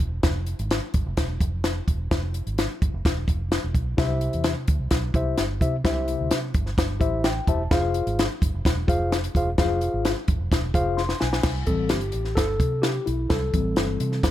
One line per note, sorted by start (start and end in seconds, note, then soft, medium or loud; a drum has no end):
0.00 0.19 E1 medium
0.00 kick medium
0.00 closed hi-hat medium
0.23 0.53 F1 loud
0.23 kick loud
0.23 snare loud
0.23 closed hi-hat medium
0.47 closed hi-hat medium
0.59 0.78 G#1 loud
0.59 closed hi-hat soft
0.71 snare loud
0.71 closed hi-hat medium
0.94 1.04 G1 medium
0.94 kick medium
0.94 closed hi-hat medium
1.06 1.16 F1 medium
1.17 1.37 E1 loud
1.17 kick medium
1.17 snare loud
1.17 closed hi-hat medium
1.40 1.79 F1 loud
1.40 kick medium
1.40 closed hi-hat medium
1.64 snare loud
1.64 closed hi-hat medium
1.88 2.07 E1 medium
1.88 kick medium
1.88 closed hi-hat medium
2.11 2.40 F1 loud
2.11 kick loud
2.11 snare loud
2.11 closed hi-hat medium
2.34 closed hi-hat medium
2.47 2.66 G#1 medium
2.47 closed hi-hat medium
2.58 snare loud
2.58 closed hi-hat medium
2.82 2.91 G1 medium
2.82 kick medium
2.82 closed hi-hat medium
2.94 3.03 F1 medium
3.05 3.24 E1 medium
3.05 kick medium
3.05 snare loud
3.05 closed hi-hat medium
3.28 3.57 F1 medium
3.28 kick medium
3.28 closed hi-hat medium
3.52 snare loud
3.52 closed hi-hat medium
3.64 3.73 E1 medium
3.75 3.94 B1 medium
3.75 kick medium
3.75 closed hi-hat medium
3.97 4.27 C2 loud
3.97 4.64 C3 medium
3.97 4.51 E4 medium
3.97 4.51 G4 medium
3.97 4.52 C5 medium
3.97 4.52 E5 loud
3.97 kick loud
3.97 snare loud
3.97 closed hi-hat medium
4.21 closed hi-hat medium
4.33 4.53 E2 medium
4.33 closed hi-hat soft
4.44 snare loud
4.44 closed hi-hat medium
4.68 4.78 D2 medium
4.68 kick medium
4.68 closed hi-hat medium
4.80 4.90 C2 medium
4.91 5.10 B1 medium
4.91 kick medium
4.91 snare loud
4.91 closed hi-hat loud
5.14 5.34 C2 loud
5.14 5.41 E4 medium
5.14 5.41 G4 medium
5.14 5.42 C5 medium
5.14 5.42 E5 medium
5.14 kick medium
5.14 closed hi-hat medium
5.38 5.58 G1 medium
5.38 snare medium
5.38 closed hi-hat medium
5.61 5.81 C3 medium
5.61 5.74 E4 medium
5.61 5.75 G4 medium
5.61 5.75 C5 medium
5.61 5.75 E5 medium
5.61 kick medium
5.61 closed hi-hat medium
5.84 6.14 C2 loud
5.84 6.51 C3 medium
5.84 6.38 E4 medium
5.84 6.38 G4 medium
5.84 6.38 C5 medium
5.84 6.38 E5 loud
5.84 kick loud
5.84 snare loud
5.84 closed hi-hat medium
6.08 closed hi-hat medium
6.21 6.30 D2 medium
6.31 6.51 C3 loud
6.31 snare loud
6.31 closed hi-hat medium
6.54 6.74 G1 medium
6.54 kick medium
6.54 closed hi-hat medium
6.66 snare soft
6.78 6.97 G1 medium
6.78 kick medium
6.78 snare loud
6.78 closed hi-hat medium
7.00 7.39 A1 loud
7.00 7.27 E4 medium
7.00 7.27 G4 medium
7.00 7.28 C5 medium
7.00 7.28 E5 medium
7.00 kick medium
7.00 closed hi-hat medium
7.24 7.46 G5 medium
7.24 snare loud
7.24 closed hi-hat medium
7.47 7.67 E1 loud
7.47 7.61 E4 medium
7.47 7.62 G4 medium
7.47 7.62 C5 medium
7.47 7.62 E5 medium
7.47 7.70 A5 medium
7.47 kick medium
7.47 closed hi-hat medium
7.71 8.00 F1 loud
7.71 8.24 F4 medium
7.71 8.25 G#4 medium
7.71 8.25 C5 medium
7.71 8.25 F5 medium
7.71 kick loud
7.71 snare loud
7.71 closed hi-hat medium
7.94 closed hi-hat medium
8.07 8.26 G#1 medium
8.07 closed hi-hat soft
8.19 snare loud
8.19 closed hi-hat medium
8.42 8.51 G1 medium
8.42 kick medium
8.42 closed hi-hat medium
8.54 8.63 F1 medium
8.65 8.84 E1 loud
8.65 kick medium
8.65 snare loud
8.65 closed hi-hat medium
8.88 9.26 F1 medium
8.88 9.14 F4 medium
8.88 9.15 G#4 medium
8.88 9.15 C5 medium
8.88 9.15 F5 medium
8.88 kick medium
8.88 closed hi-hat medium
9.12 snare medium
9.12 closed hi-hat medium
9.24 closed hi-hat medium
9.35 9.54 E1 medium
9.35 9.48 F4 medium
9.35 9.49 G#4 medium
9.35 9.49 C5 medium
9.35 9.49 F5 medium
9.35 kick medium
9.35 closed hi-hat medium
9.58 9.87 F1 loud
9.58 10.11 F4 medium
9.58 10.11 G#4 medium
9.58 10.12 C5 medium
9.58 10.12 F5 loud
9.58 kick loud
9.58 snare loud
9.58 closed hi-hat medium
9.81 closed hi-hat medium
9.94 10.12 G#1 medium
10.05 snare loud
10.05 closed hi-hat medium
10.28 10.38 G1 medium
10.28 kick medium
10.28 closed hi-hat medium
10.40 10.49 F1 medium
10.52 10.71 E1 medium
10.52 kick medium
10.52 snare loud
10.52 closed hi-hat medium
10.74 11.12 F1 medium
10.74 11.01 F4 medium
10.74 11.01 G#4 medium
10.74 11.01 C5 medium
10.74 11.01 F5 medium
10.74 kick medium
10.74 closed hi-hat medium
10.97 11.20 C6 medium
10.97 snare medium
11.09 snare medium
11.20 11.41 B1 medium
11.20 11.65 G#5 medium
11.20 snare medium
11.33 snare medium
11.43 11.63 C2 loud
11.43 kick loud
11.43 snare loud
11.43 crash medium
11.66 11.93 A1 medium
11.66 11.98 E3 medium
11.66 11.98 G3 medium
11.66 11.98 C4 medium
11.66 11.89 A4 medium
11.66 kick medium
11.66 closed hi-hat medium
11.89 12.10 G1 medium
11.89 12.38 G4 medium
11.89 snare loud
11.89 closed hi-hat medium
12.01 closed hi-hat soft
12.12 12.33 A1 medium
12.12 closed hi-hat medium
12.25 snare soft
12.35 12.57 G1 medium
12.35 12.84 A4 loud
12.35 kick medium
12.35 snare loud
12.35 closed hi-hat medium
12.60 12.98 C3 medium
12.60 kick medium
12.60 closed hi-hat medium
12.82 13.07 G4 medium
12.82 snare loud
12.82 closed hi-hat medium
13.06 13.26 B1 medium
13.06 13.31 E4 medium
13.06 closed hi-hat medium
13.30 13.50 C2 loud
13.30 14.31 A4 medium
13.30 kick loud
13.30 snare loud
13.30 closed hi-hat medium
13.53 13.73 A1 medium
13.53 14.31 E3 soft
13.53 14.31 G3 medium
13.53 14.31 C4 medium
13.53 kick medium
13.53 closed hi-hat medium
13.76 13.96 G1 medium
13.76 snare loud
13.76 closed hi-hat medium
14.00 14.19 C3 loud
14.00 closed hi-hat medium
14.12 snare soft
14.23 14.31 G1 loud
14.23 kick medium
14.23 snare loud
14.23 closed hi-hat medium